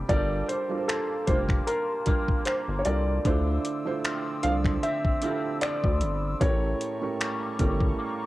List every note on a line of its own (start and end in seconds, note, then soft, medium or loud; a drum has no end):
0.00 0.11 A#2 medium
0.00 0.11 C3 medium
0.00 0.11 A#3 medium
0.00 0.18 C4 medium
0.00 0.09 D4 medium
0.00 0.88 D4 medium
0.00 0.12 G4 medium
0.00 3.21 G4 medium
0.00 0.10 A4 medium
0.00 0.11 C5 medium
0.00 0.15 E5 medium
0.00 3.21 G5 medium
0.09 0.43 G1 loud
0.09 0.66 G3 medium
0.09 3.25 G3 medium
0.09 0.66 D4 medium
0.09 0.66 F4 medium
0.09 0.66 A4 medium
0.09 0.67 A#4 loud
0.09 0.46 D5 loud
0.09 3.22 F5 medium
0.09 3.22 A5 medium
0.09 kick loud
0.09 closed hi-hat medium
0.48 0.89 C5 medium
0.48 closed hi-hat medium
0.69 1.24 G3 medium
0.69 1.24 D4 medium
0.69 1.24 F4 medium
0.69 1.25 A4 medium
0.69 0.77 A#4 medium
0.78 1.28 C5 medium
0.88 1.26 A#3 medium
0.88 1.67 F4 medium
0.88 1.25 A4 medium
0.88 finger snap loud
0.88 closed hi-hat medium
1.27 1.61 F1 loud
1.27 2.02 G3 medium
1.27 2.06 A#3 medium
1.27 2.02 D4 medium
1.27 2.02 F4 medium
1.27 2.02 G4 medium
1.27 2.03 A#4 medium
1.27 1.36 C5 medium
1.27 kick medium
1.27 closed hi-hat medium
1.49 finger snap medium
1.49 kick medium
1.67 2.07 F4 medium
1.67 2.48 A#4 medium
1.67 closed hi-hat medium
2.06 2.81 G3 medium
2.06 2.45 A#3 medium
2.06 2.81 D4 medium
2.06 2.81 F4 medium
2.06 5.23 F4 medium
2.06 2.81 G4 medium
2.06 2.81 A#4 medium
2.06 kick medium
2.06 closed hi-hat medium
2.28 kick medium
2.45 3.34 A#3 medium
2.45 2.53 C5 medium
2.45 finger snap loud
2.45 closed hi-hat medium
2.68 2.83 G1 medium
2.79 2.86 C#5 medium
2.85 3.19 C2 medium
2.85 3.23 G3 medium
2.85 3.23 D4 medium
2.85 3.23 F4 medium
2.85 3.23 A4 medium
2.85 3.23 A#4 medium
2.85 4.39 D5 medium
2.85 closed hi-hat medium
3.25 3.59 D2 loud
3.25 3.82 D3 medium
3.25 6.41 D3 medium
3.25 3.82 A3 medium
3.25 3.82 E4 medium
3.25 3.82 F4 medium
3.25 6.38 C5 medium
3.25 3.83 C5 loud
3.25 6.38 D5 medium
3.25 6.38 D6 medium
3.25 6.38 E6 medium
3.25 kick loud
3.25 closed hi-hat medium
3.65 closed hi-hat medium
3.85 4.40 D3 medium
3.85 4.40 A3 medium
3.85 4.40 E4 medium
3.85 4.40 F4 medium
3.85 4.41 C5 medium
4.04 4.42 F3 medium
4.04 4.82 C4 medium
4.04 finger snap loud
4.04 closed hi-hat medium
4.43 4.77 C2 medium
4.43 5.18 D3 medium
4.43 5.21 F3 medium
4.43 5.18 A3 medium
4.43 5.18 D4 medium
4.43 5.18 F4 medium
4.43 4.51 C5 medium
4.43 4.52 F5 medium
4.43 closed hi-hat medium
4.51 5.22 D5 medium
4.65 finger snap medium
4.65 kick medium
4.83 5.22 C4 medium
4.83 5.64 E5 medium
4.83 closed hi-hat medium
5.05 kick medium
5.22 6.34 D3 medium
5.22 5.61 F3 medium
5.22 6.34 A3 medium
5.22 6.50 C4 medium
5.22 6.34 E4 medium
5.22 7.21 E4 medium
5.22 6.34 F4 medium
5.22 5.30 G4 medium
5.22 closed hi-hat medium
5.30 6.38 A4 medium
5.61 6.50 F3 medium
5.61 6.37 D5 medium
5.61 finger snap loud
5.61 closed hi-hat medium
5.84 6.03 D2 medium
5.84 kick loud
6.01 6.35 G1 medium
6.01 closed hi-hat medium
6.40 6.74 A1 loud
6.40 6.97 A2 medium
6.40 8.26 A2 medium
6.40 6.97 A3 medium
6.40 6.98 C#4 medium
6.40 6.98 G4 medium
6.40 6.98 A#4 loud
6.40 8.26 C#5 medium
6.40 8.26 G5 medium
6.40 8.26 A5 medium
6.40 8.26 A#5 medium
6.40 8.26 C#6 medium
6.40 kick loud
6.40 closed hi-hat medium
6.81 closed hi-hat medium
7.01 7.56 A2 medium
7.01 7.56 A3 medium
7.01 7.56 C#4 medium
7.01 7.56 G4 medium
7.01 7.56 A#4 medium
7.20 7.59 G3 medium
7.20 7.98 A#3 medium
7.20 8.26 C#4 medium
7.20 finger snap loud
7.20 closed hi-hat medium
7.59 7.93 G1 medium
7.59 8.26 A2 medium
7.59 8.26 G3 medium
7.59 8.26 A3 medium
7.59 8.26 C#4 medium
7.59 8.26 G4 medium
7.59 8.26 A#4 medium
7.59 kick medium
7.59 closed hi-hat medium
7.80 kick medium
7.99 8.26 A#3 medium